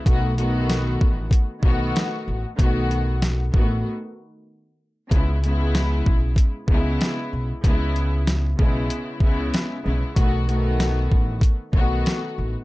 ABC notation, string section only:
X:1
M:4/4
L:1/8
Q:"Swing 16ths" 1/4=95
K:C#m
V:1 name="String section"
[D,A,B,F] [D,A,B,F]3 z [D,A,B,F]2 z | [D,A,B,F]2 z [D,A,B,F] z4 | [C,G,B,E] [C,G,B,E]3 z [C,G,B,E]2 z | [C,G,B,E]2 z [C,G,B,E]2 [C,G,B,E]2 [C,G,B,E] |
[D,A,B,F] [D,A,B,F]3 z [D,A,B,F]2 z |]